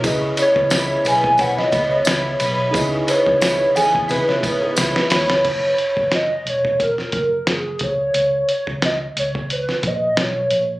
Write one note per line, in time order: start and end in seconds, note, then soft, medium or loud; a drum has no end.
0.00 0.31 C#2 loud
0.00 0.37 B3 medium
0.00 0.11 D#4 medium
0.00 2.69 E4 medium
0.00 2.70 G#4 medium
0.00 0.12 A#4 medium
0.00 ride medium
0.04 2.72 C#3 medium
0.04 2.71 B4 medium
0.04 2.71 D#5 medium
0.04 kick loud
0.04 tambourine medium
0.37 1.04 B3 medium
0.37 0.56 C#5 medium
0.37 ride medium
0.37 tambourine soft
0.41 1.03 C#5 loud
0.56 0.95 C#2 loud
0.56 kick medium
0.70 1.39 E4 medium
0.70 snare loud
0.70 ride medium
0.70 tambourine medium
1.05 1.59 B1 medium
1.05 1.71 B3 medium
1.05 1.38 B4 medium
1.05 1.42 G#5 loud
1.05 ride medium
1.05 tambourine soft
1.24 kick medium
1.38 2.06 E4 medium
1.38 1.57 C#5 medium
1.38 1.60 F#5 loud
1.38 kick medium
1.38 ride medium
1.38 tambourine soft
1.58 2.09 D#5 loud
1.58 snare soft
1.72 2.00 C#2 loud
1.72 3.06 B3 medium
1.72 kick loud
1.72 ride medium
1.72 tambourine soft
1.91 2.06 C#5 medium
2.05 2.34 C#2 loud
2.05 3.40 E4 medium
2.05 2.59 C#5 medium
2.05 snare loud
2.05 ride medium
2.05 tambourine medium
2.40 2.68 B1 medium
2.40 5.09 B4 medium
2.40 ride medium
2.40 tambourine soft
2.71 3.01 C#2 loud
2.71 5.44 C#3 medium
2.71 2.80 D#4 medium
2.71 5.40 G#4 medium
2.71 5.40 B4 medium
2.71 kick loud
2.71 ride medium
2.75 5.42 E4 medium
2.75 5.42 D#5 medium
2.75 tambourine medium
3.07 3.74 B3 medium
3.07 3.26 B4 medium
3.07 3.77 C#5 loud
3.07 ride medium
3.07 tambourine soft
3.26 3.66 C#2 loud
3.26 kick medium
3.40 4.08 E4 medium
3.40 snare loud
3.40 ride medium
3.40 tambourine medium
3.75 4.11 E2 loud
3.75 4.42 B3 medium
3.75 4.08 G#4 medium
3.75 4.09 G#5 loud
3.75 ride medium
3.75 tambourine soft
3.95 kick medium
4.08 4.43 C#3 loud
4.08 4.76 E4 medium
4.08 4.74 B4 medium
4.08 ride medium
4.08 tambourine soft
4.28 4.42 C#5 medium
4.28 snare soft
4.43 4.70 G#2 medium
4.43 5.52 B3 medium
4.43 kick medium
4.43 ride medium
4.43 tambourine soft
4.61 4.93 B4 medium
4.76 4.92 C#2 loud
4.76 6.02 E4 medium
4.76 snare medium
4.76 ride medium
4.76 tambourine medium
4.96 snare medium
5.10 5.26 D#2 loud
5.10 5.52 B4 medium
5.10 5.76 C#5 loud
5.10 snare loud
5.10 open hi-hat medium
5.10 ride medium
5.10 tambourine soft
5.29 5.41 C#2 medium
5.29 snare loud
5.45 5.72 F#1 medium
5.45 kick loud
5.45 closed hi-hat medium
5.45 crash medium
5.78 6.11 C#5 medium
5.78 closed hi-hat medium
5.97 6.36 F#1 medium
5.97 kick medium
6.12 6.51 D#5 loud
6.12 snare medium
6.12 closed hi-hat medium
6.45 7.00 E1 medium
6.45 6.84 C#5 loud
6.45 closed hi-hat medium
6.65 kick medium
6.80 7.51 A#4 loud
6.80 kick medium
6.80 closed hi-hat medium
6.98 snare soft
7.12 7.40 F#1 medium
7.12 kick medium
7.12 closed hi-hat medium
7.47 7.74 F#1 medium
7.47 7.84 G#4 medium
7.47 snare loud
7.47 closed hi-hat medium
7.79 8.08 C#2 medium
7.79 8.50 C#5 loud
7.79 kick medium
7.79 closed hi-hat medium
8.14 8.42 C#2 loud
8.14 closed hi-hat medium
8.49 8.82 C#5 loud
8.49 closed hi-hat medium
8.67 9.06 C#2 medium
8.67 kick medium
8.82 8.99 D#5 loud
8.82 snare medium
8.82 closed hi-hat medium
9.16 9.71 C#2 medium
9.16 9.49 C#5 medium
9.16 closed hi-hat medium
9.35 kick medium
9.50 9.89 B4 medium
9.50 closed hi-hat medium
9.69 snare soft
9.83 10.11 A#1 medium
9.83 kick medium
9.83 closed hi-hat medium
9.87 10.22 D#5 medium
10.17 10.45 B1 medium
10.17 10.72 C#5 medium
10.17 snare loud
10.17 closed hi-hat medium
10.51 10.79 A#1 medium
10.51 closed hi-hat medium